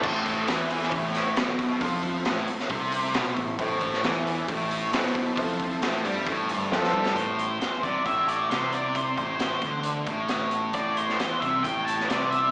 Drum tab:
CC |x---------------|----------------|----------------|----------------|
HH |--o-o-o-o-o-o-o-|o-o-o-o-o-o-o-o-|o-o-o-o-o-o-o-o-|o-o-o-o-o-o-----|
SD |----o--o--o-o---|----o--o----o---|---oo-------o---|----o-------oo-o|
BD |o-o-----o-----o-|o-o-----o-----o-|o-o-----o-----o-|o-o-----o-----o-|

CC |----------------|----------------|----------------|
HH |x-x-x-x-x-x-x-x-|x-x-x-x-x-x-x-x-|x-x-x-x-x-x-x-x-|
SD |----o-------o---|----o-------o---|---oo------oo---|
BD |o-----o-o-------|o-o---o---o-----|o-----o-o-------|